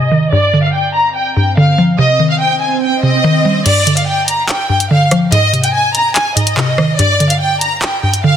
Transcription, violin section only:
Already playing: D#5
0.32 D5
0.64 F5
0.74 G5
0.95 A#5
1.16 G5
1.36 G5
1.58 F5
1.99 D#5
2.30 F5
2.41 G5
2.61 G#5
2.82 G5
3.03 D#5
3.66 D5
3.97 F5
4.07 G5
4.28 A#5
4.49 G5
4.70 G5
4.91 F5
5.32 D#5
5.64 G5
5.74 G#5
5.95 A#5
6.16 G#5
6.36 D#5
6.99 D5
7.30 F5
7.41 G5
7.61 A#5
7.83 G5
8.03 G5
8.24 F5

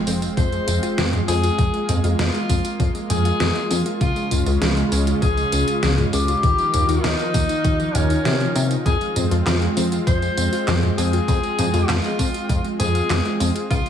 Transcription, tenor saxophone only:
0.37 C5
1.28 G#4
2.19 F4
3.10 G#4
4.01 F4
5.22 G#4
6.13 G4
7.04 D#4
7.95 C#4
8.86 G#4
10.07 C5
10.98 G#4
11.89 F4
12.80 G#4
13.71 F4

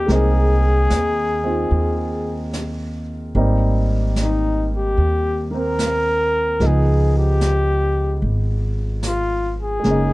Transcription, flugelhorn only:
Already playing: G4
0.14 G#4
4.23 D#4
4.77 G4
5.57 A#4
6.66 G#4
7.18 G4
9.07 F4
9.62 G#4

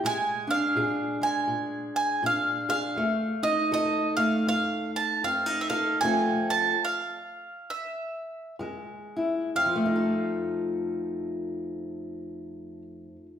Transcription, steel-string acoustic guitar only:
0.04 A#2 G#3
0.47 D4
0.76 A#2 G#4
1.21 G#3
1.48 A#2
2.23 A#2 D4
2.69 G#4
2.96 F2 A3
3.43 D#4
3.71 F2 A4
4.17 A3
4.47 F2
5.24 F2 C4
5.46 D#4
5.70 A4
6.02 F2 F3 A3 C4 A4
8.59 F#2 G#3
9.16 E4
9.55 F2
9.66 F3
9.76 A3
9.85 D#4
9.96 A4

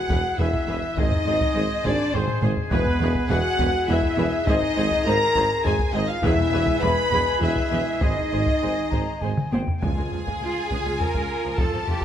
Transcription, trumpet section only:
Already playing: F#5
0.39 E5
0.98 D#5
1.85 D5
2.14 C5
2.71 B4
3.30 F#5
3.89 E5
4.47 D#5
5.06 A#5
5.65 G#5
5.94 D#5
6.09 F5
6.24 E5
6.82 B5
7.41 E5
8.01 D#5

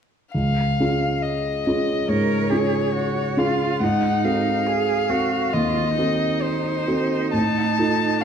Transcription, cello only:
2.08 A#4
2.49 G#4
2.94 F#4
3.38 F4
3.83 D#4
4.66 G#4
5.09 F#4
5.53 F4
5.98 D#4

